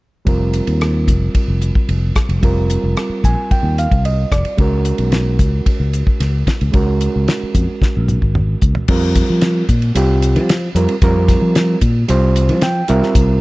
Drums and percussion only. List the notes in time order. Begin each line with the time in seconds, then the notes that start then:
0.27 kick, ride
0.53 hi-hat pedal, ride
0.67 ride
0.81 cross-stick, ride
1.08 kick, hi-hat pedal, ride
1.35 kick, ride
1.61 hi-hat pedal, ride
1.75 kick
1.89 ride
2.15 kick, cross-stick, hi-hat pedal, ride
2.29 ride
2.43 kick, ride
2.70 hi-hat pedal, ride
2.97 cross-stick, ride
3.24 kick, hi-hat pedal, ride
3.51 kick, ride
3.78 hi-hat pedal, ride
3.91 kick, ride
4.05 ride
4.32 kick, cross-stick, hi-hat pedal, ride
4.45 ride
4.58 kick, ride
4.85 hi-hat pedal, ride
4.98 ride
5.12 snare, ride
5.39 kick, hi-hat pedal, ride
5.66 kick, ride
5.93 hi-hat pedal, ride
6.07 kick
6.20 snare, ride
6.47 kick, snare, hi-hat pedal, ride
6.61 ride
6.73 kick, ride
7.01 hi-hat pedal, ride
7.28 snare, ride
7.55 kick, hi-hat pedal, ride
7.82 kick, snare
8.08 hi-hat pedal, mid tom
8.22 kick
8.35 mid tom
8.61 kick, hi-hat pedal
8.75 floor tom
8.88 kick, crash
9.15 kick, hi-hat pedal, ride
9.41 snare, hi-hat pedal, ride
9.69 kick, hi-hat pedal, ride
9.82 ride
9.95 hi-hat pedal, ride
10.22 hi-hat pedal, ride
10.36 ride
10.49 snare, hi-hat pedal, ride
10.76 hi-hat pedal, ride
10.89 ride
11.02 kick, hi-hat pedal, ride
11.28 kick, snare, hi-hat pedal, ride
11.55 snare, hi-hat pedal, ride
11.81 kick, hi-hat pedal, ride
12.09 hi-hat pedal, ride
12.36 hi-hat pedal, ride
12.49 ride
12.61 snare, hi-hat pedal, ride
12.88 hi-hat pedal, ride
13.03 snare
13.15 kick, hi-hat pedal, ride